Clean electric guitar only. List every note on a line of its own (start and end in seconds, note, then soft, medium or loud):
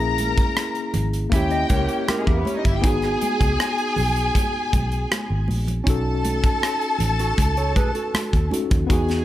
1.32 1.51 C#5 soft
1.32 1.50 E5 medium
1.51 1.69 D#5 medium
1.70 2.07 A#4 medium
1.70 2.06 C#5 medium
2.08 2.26 G4 soft
2.08 2.26 A#4 medium
2.27 2.81 E4 medium
2.27 2.81 G4 medium
7.20 7.56 F#4 medium
7.20 7.56 A4 medium
7.57 7.76 A4 medium
7.57 7.75 C#5 medium
7.76 7.94 G#4 medium
7.76 7.94 B4 medium
7.95 8.86 F#4 soft
7.95 8.86 A4 medium